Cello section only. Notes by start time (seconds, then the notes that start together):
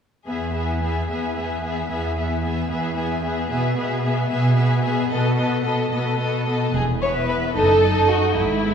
0.27 E2
1.08 E2
1.90 E2
2.69 E2
3.50 B2
4.30 B2
5.11 B2
5.92 B2
6.74 E2
7.56 F#2
8.37 G#2